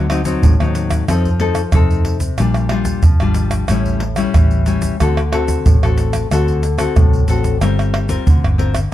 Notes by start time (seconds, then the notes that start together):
Already playing: D2 D3
0.10 F#3 C4 D#4, pandeiro, tamborim
0.25 F#3 C4 D#4, pandeiro, shaker, surdo
0.42 A1 A2, pandeiro, shaker, surdo
0.60 D#2 F#3 C4 D#4, pandeiro, tamborim, shaker
0.75 pandeiro, shaker
0.90 pandeiro, tamborim, shaker, surdo
1.08 F2 F3 C4 D#4 A4, pandeiro, tamborim, shaker, surdo
1.25 pandeiro, shaker, surdo
1.40 C4 D#4 A4, pandeiro
1.55 pandeiro, tamborim, shaker
1.72 F2 C3 C4 D#4 A4, pandeiro, tamborim, shaker, surdo
1.91 pandeiro, shaker
2.05 pandeiro, surdo
2.20 pandeiro, shaker, surdo
2.38 A#1 A#2 G3 D4 F4, pandeiro, tamborim, shaker, surdo
2.54 pandeiro, tamborim, shaker
2.69 G3 D4 F4, pandeiro, tamborim
2.85 pandeiro, shaker, surdo
3.03 F2 F3, pandeiro, shaker, surdo
3.20 G#1 G3 D4 F4, pandeiro, tamborim, shaker
3.34 pandeiro, shaker
3.51 pandeiro, tamborim, shaker, surdo
3.68 A1 A2 G3 C#4 E4, pandeiro, tamborim, shaker, surdo
3.86 pandeiro, shaker, surdo
4.00 pandeiro
4.16 G3 C#4 E4, pandeiro, tamborim, shaker
4.34 A1 E3, pandeiro, tamborim, shaker, surdo
4.51 pandeiro, shaker
4.66 G3 C#4 E4, pandeiro, shaker
4.82 pandeiro, shaker, surdo
5.00 D2 D3 C4 F#4 A4, pandeiro, tamborim, shaker, surdo
5.17 pandeiro, tamborim, shaker
5.32 C4 F#4 A4, pandeiro, tamborim
5.48 pandeiro, shaker, surdo
5.66 A1 A2, pandeiro, shaker, surdo
5.83 A1 C4 F#4 A4, pandeiro, tamborim, shaker
5.98 pandeiro, shaker
6.13 pandeiro, tamborim, shaker, surdo
6.31 D2 D3 C4 F#4 A4, pandeiro, tamborim, shaker, surdo
6.48 pandeiro, shaker, surdo
6.63 pandeiro, shaker
6.78 C4 F#4 A4, pandeiro, tamborim, shaker
6.96 C2 A2, pandeiro, tamborim, shaker, surdo
7.13 pandeiro, shaker
7.28 A1 C4 F#4 A4, pandeiro, shaker
7.44 pandeiro, shaker, surdo
7.61 G1 G3 C4 F4 A#4, pandeiro, tamborim, shaker, surdo
7.79 pandeiro, tamborim, shaker
7.94 pandeiro, tamborim
8.09 C4 F4 A#4, pandeiro, shaker, surdo
8.27 D2 D3, pandeiro, shaker, surdo
8.44 G1, pandeiro, tamborim, shaker
8.58 C4 F4 A#4, pandeiro
8.75 pandeiro, tamborim, shaker, surdo